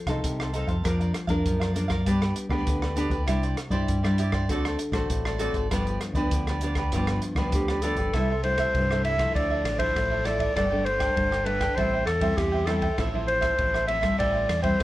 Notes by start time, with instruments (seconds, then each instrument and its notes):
Already playing: nylon-string guitar F3
0.06 fingered electric bass C2, nylon-string guitar C4 D#4 A4, cavaquinho A4 C5 F5, kick, cross-stick, closed hi-hat
0.24 fingered electric bass C2, nylon-string guitar C3, kick, closed hi-hat
0.40 cavaquinho A4 C5 F5, cross-stick
0.53 nylon-string guitar C4 D#4 A4, cavaquinho D#4 A4 C5 F5, closed hi-hat
0.67 fingered electric bass F2, cavaquinho A4 C5 F5, kick, closed hi-hat
0.84 fingered electric bass F2, nylon-string guitar F3 A#3 D4 A#4, cavaquinho D4 A#4 D5 F5, kick, cross-stick, closed hi-hat
1.00 cavaquinho A#4 D5 F5, closed hi-hat
1.14 muted cavaquinho stroke, cross-stick, closed hi-hat
1.27 fingered electric bass F2, nylon-string guitar A#3 D4 A#4, cavaquinho A#4 D5 F5, kick, closed hi-hat
1.46 fingered electric bass F#2, nylon-string guitar F3, kick, closed hi-hat
1.60 cavaquinho A#4 D5 F5, cross-stick, closed hi-hat
1.74 nylon-string guitar A#3 D4 A#4, cavaquinho D4 A#4 D5 F5, closed hi-hat
1.88 cavaquinho A#4 D5 F5, kick, cross-stick, closed hi-hat
2.06 fingered electric bass G2, nylon-string guitar G3 B3 D4 G4, cavaquinho D4 G4 B4 D5, kick, closed hi-hat
2.21 cavaquinho G4 B4 D5, cross-stick, closed hi-hat
2.35 muted cavaquinho stroke, closed hi-hat
2.49 fingered electric bass D2, nylon-string guitar B3 D4 G4, cavaquinho G4 B4 D5, kick, cross-stick
2.67 fingered electric bass D2, nylon-string guitar D3, kick, closed hi-hat
2.82 cavaquinho G4 B4 D5, cross-stick
2.96 nylon-string guitar B3 D4 G4, cavaquinho D4 G4 B4 D5, closed hi-hat
3.10 fingered electric bass D2, cavaquinho G4 B4 D5, kick, closed hi-hat
3.27 fingered electric bass C2, nylon-string guitar C3 G3 D4 E4, cavaquinho E4 G4 C5 D5, kick, cross-stick, closed hi-hat
3.43 cavaquinho G4 C5 D5, closed hi-hat
3.57 muted cavaquinho stroke, cross-stick, closed hi-hat
3.70 fingered electric bass G2, nylon-string guitar G3 D4 E4, cavaquinho G4 C5 D5, kick, closed hi-hat
3.88 fingered electric bass G2, nylon-string guitar G3, kick, closed hi-hat
4.03 nylon-string guitar G3 D4 E4, cavaquinho G4 C5 D5, cross-stick, closed hi-hat
4.18 cavaquinho E4 G4 C5 D5, closed hi-hat
4.32 cavaquinho G4 C5 D5, kick, cross-stick
4.48 fingered electric bass D2, nylon-string guitar D3 A3 C4 F#4, cavaquinho F#4 A4 C5 D5, kick, closed hi-hat
4.65 cavaquinho A4 C5 D5, cross-stick, closed hi-hat
4.79 muted cavaquinho stroke, closed hi-hat
4.92 fingered electric bass A1, nylon-string guitar A3 C4 F#4, cavaquinho A4 C5 D5, kick, cross-stick, closed hi-hat
5.10 fingered electric bass A1, nylon-string guitar A2, kick, closed hi-hat
5.25 cavaquinho A4 C5 D5, cross-stick
5.38 nylon-string guitar A3 C4 F#4, cavaquinho F#4 A4 C5 D5, closed hi-hat
5.52 fingered electric bass G#1, cavaquinho C5 D5, kick, closed hi-hat
5.57 cavaquinho A4
5.71 fingered electric bass G1, nylon-string guitar G2 F3 B3 D4, cavaquinho F4 G4 B4 D5, kick, cross-stick, closed hi-hat
5.86 cavaquinho G4 B4 D5, closed hi-hat
6.00 muted cavaquinho stroke, cross-stick, closed hi-hat
6.13 fingered electric bass D2, nylon-string guitar F3 B3 D4, cavaquinho G4 B4 D5, kick, closed hi-hat
6.31 fingered electric bass D2, nylon-string guitar D3, kick, closed hi-hat
6.47 cavaquinho G4 B4 D5, cross-stick, closed hi-hat
6.61 nylon-string guitar F3 B3 D4, cavaquinho F4 G4 B4 D5, closed hi-hat
6.75 cavaquinho G4 B4 D5, kick, cross-stick, closed hi-hat
6.92 fingered electric bass G1, nylon-string guitar G2 F3 B3 D4, cavaquinho F4 G4 B4 D5, kick, closed hi-hat
7.07 cavaquinho G4 B4 D5, cross-stick, closed hi-hat
7.22 muted cavaquinho stroke, closed hi-hat
7.35 fingered electric bass D2, nylon-string guitar F3 B3 D4, cavaquinho G4 B4 D5, kick, cross-stick
7.52 fingered electric bass D2, nylon-string guitar D3, clarinet G4, kick, closed hi-hat
7.68 cavaquinho G4 B4 D5, cross-stick
7.82 nylon-string guitar F3 B3 D4, cavaquinho F4 G4 B4 D5, clarinet A4, closed hi-hat
7.95 fingered electric bass G1, cavaquinho G4 B4 D5, kick, closed hi-hat
8.13 fingered electric bass C2, nylon-string guitar C3 G3 A3 E4, cavaquinho E4 A4 C5 E5, kick, cross-stick, ride
8.30 cavaquinho A4 C5 E5
8.43 nylon-string guitar G3 A3 E4, clarinet C5, muted cavaquinho stroke, ride
8.58 cavaquinho A4 C5 E5, kick, cross-stick, ride
8.74 fingered electric bass C2, nylon-string guitar G2, kick, ride
8.90 nylon-string guitar G3 A3 E4, cavaquinho A4 C5 E5, cross-stick
9.04 cavaquinho E4 A4 C5 E5, clarinet E5, ride
9.18 nylon-string guitar F3 A3 E4, cavaquinho A4 C5 E5, kick, cross-stick, ride
9.34 fingered electric bass D2, nylon-string guitar D3, cavaquinho F4 A4 D5 E5, clarinet D5, kick, ride
9.50 cavaquinho A4 D5 E5
9.64 fingered electric bass A1, muted cavaquinho stroke, cross-stick, ride
9.78 nylon-string guitar F3 A3 E4, cavaquinho A4 D5 E5, clarinet C5, kick, ride
9.96 fingered electric bass A1, nylon-string guitar A2, kick, cross-stick, ride
10.10 cavaquinho A4 D5 E5
10.24 nylon-string guitar F3 A3 E4, cavaquinho F4 A4 D5 E5, clarinet D5, cross-stick, ride
10.39 cavaquinho A4 D5 E5, kick, ride
10.56 fingered electric bass G1, nylon-string guitar G2 G3 A3 D4, cavaquinho D4 A4 D5 G5, clarinet D5, kick, cross-stick, ride
10.70 nylon-string guitar G3 A3 D4, cavaquinho A4 D5 G5
10.85 clarinet C5, muted cavaquinho stroke, ride
10.99 cavaquinho A4 D5 G5, kick, cross-stick, ride
11.16 fingered electric bass G1, nylon-string guitar D3 G3 A3 D4, kick, ride
11.32 cavaquinho A4 D5 G5, cross-stick
11.45 nylon-string guitar G3 A3 D4, cavaquinho D4 A4 D5 G5, clarinet B4, ride
11.60 cavaquinho A4 D5 G5, kick, cross-stick, ride
11.76 fingered electric bass A1, nylon-string guitar A2 G3 C4 E4, cavaquinho A4 C5 E5 G5, clarinet C5, kick, ride
11.93 cavaquinho C5 E5 G5
12.05 fingered electric bass E2, clarinet A4, cross-stick, ride
12.20 nylon-string guitar G3 C4 E4, cavaquinho C5 E5 G5, kick, ride
12.37 fingered electric bass E2, nylon-string guitar E3, clarinet G4, kick, cross-stick, ride
12.52 cavaquinho C5 E5 G5
12.66 nylon-string guitar G3 C4 E4, clarinet A4, cavaquinho A4 C5 E5 G5, cross-stick, ride
12.82 cavaquinho C5 E5 G5, kick, ride
12.98 fingered electric bass A1, nylon-string guitar A2 F3 C4 E4, cavaquinho F4 A4 C5 E5, kick, cross-stick, ride
13.13 nylon-string guitar F3 C4 E4, cavaquinho A4 C5 E5
13.27 clarinet C5, muted cavaquinho stroke, ride
13.41 cavaquinho A4 C5 E5, kick, cross-stick, ride
13.59 fingered electric bass A1, nylon-string guitar A2 F3 C4 E4, kick, ride
13.74 cavaquinho A4 C5 E5, cross-stick
13.87 nylon-string guitar F3 C4 E4, cavaquinho F4 A4 C5 E5, clarinet E5, ride
14.01 nylon-string guitar G3 C4 E4, cavaquinho A4 C5 E5, kick, cross-stick, ride
14.18 fingered electric bass A1, nylon-string guitar A2, cavaquinho A4 C5 E5 G5, clarinet D5, kick, ride
14.32 cavaquinho C5 E5 G5
14.49 fingered electric bass E2, muted cavaquinho stroke, cross-stick, ride
14.63 nylon-string guitar G3 C4 E4, clarinet C5, cavaquinho C5 E5 G5, kick, ride
14.80 nylon-string guitar E3